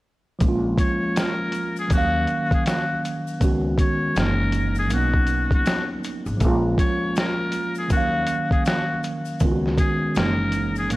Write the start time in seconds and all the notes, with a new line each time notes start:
0.39 A#1 F3 G#3, kick, closed hi-hat, shaker
0.44 A#3 C#4
0.49 F4
0.78 C#5, kick, closed hi-hat, shaker
1.16 A#4, snare, closed hi-hat, shaker
1.52 closed hi-hat, shaker
1.76 G#4, shaker
1.88 D#2 D#3 F#3, kick, closed hi-hat, shaker
1.93 A#3 C#4 F#4
1.98 F5
2.27 closed hi-hat, shaker
2.51 G#4, kick, closed hi-hat
2.66 F#4, snare, closed hi-hat, shaker
3.05 closed hi-hat, shaker
3.27 shaker
3.40 C#2 D#3 G#3 B3 C#4, kick, closed hi-hat, shaker
3.45 F#4
3.78 C#5, kick, closed hi-hat, shaker
4.15 F#1 E3 G#3 A#3 C#4 A#4, snare, closed hi-hat, shaker
4.19 D#4
4.52 closed hi-hat, shaker
4.75 G#4, shaker
4.87 B1 F#3 A#3, closed hi-hat, shaker
4.92 B3 C#4 F#4
4.96 D#4
5.14 kick
5.27 closed hi-hat, shaker
5.51 C#2 F#4, kick, closed hi-hat
5.66 snare, closed hi-hat, shaker
6.04 closed hi-hat, shaker
6.26 G#1, shaker
6.37 A#1 F3 G#3, kick, closed hi-hat, shaker
6.42 A#3 C#4
6.46 F4
6.78 C#5, kick, closed hi-hat, shaker
7.16 A#4, snare, closed hi-hat, shaker
7.52 closed hi-hat, shaker
7.75 G#4, shaker
7.88 D#2 D#3 F#3 F#4, kick, closed hi-hat, shaker
7.93 A#3 C#4
7.97 F5
8.27 closed hi-hat, shaker
8.51 G#4, kick, closed hi-hat
8.66 F#4, snare, closed hi-hat, shaker
9.04 closed hi-hat, shaker
9.26 shaker
9.40 C#2 D#3 G#3 B3, kick, closed hi-hat, shaker
9.44 C#4 F4
9.52 F#4
9.66 snare
9.78 G#4, kick, closed hi-hat, shaker
10.15 F#1 E3 G#3 A#3 A#4, snare, closed hi-hat, shaker
10.19 C#4 D#4
10.52 closed hi-hat, shaker
10.75 G#4, shaker
10.89 B1 F#3 A#3 F#4, closed hi-hat, shaker